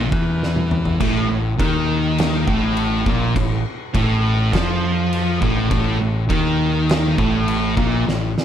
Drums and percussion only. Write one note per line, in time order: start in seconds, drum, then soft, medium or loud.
0.12 kick loud
0.43 snare medium
0.56 high tom medium
0.71 mid tom medium
0.85 floor tom medium
1.01 kick loud
1.01 splash medium
1.01 crash medium
1.60 kick loud
1.60 crash medium
2.18 snare loud
2.18 crash medium
2.48 kick medium
2.77 crash medium
3.06 kick loud
3.36 kick loud
3.36 crash medium
3.95 kick loud
3.95 crash medium
4.53 kick loud
4.53 snare loud
4.53 crash medium
5.13 crash medium
5.42 kick loud
5.71 kick loud
5.71 crash medium
6.30 kick loud
6.30 crash medium
6.89 snare loud
6.89 crash medium
7.18 kick loud
7.48 crash medium
7.77 kick loud
8.09 snare medium
8.38 snare medium